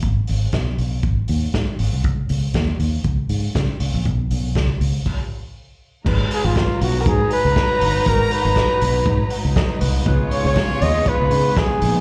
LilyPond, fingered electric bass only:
\new Staff \with { instrumentName = "Fingered electric bass" } { \clef bass \time 4/4 \key gis \dorian \tempo 4 = 120 gis,,8 gis,,8 b,,8 b,,8 gis,,8 dis,8 gis,16 r16 gis,,16 bis,,16 | cis,8 cis,8 dis,8 dis,8 cis,8 gis,8 cis16 r16 cis,16 ais,,16 | b,,8 b,,8 cis,8 cis,8 r2 | gis,,8 r16 gis,,8 r16 b,,8 gis,8 r16 cis,16 r8 g,,8 |
gis,,8 r16 gis,,8 r16 b,,8 gis,8 r16 cis,16 r8 bis,,8 | cis,8 r16 cis,8 r16 dis,8 r16 cis,16 cis8 r8 ais,,8 | }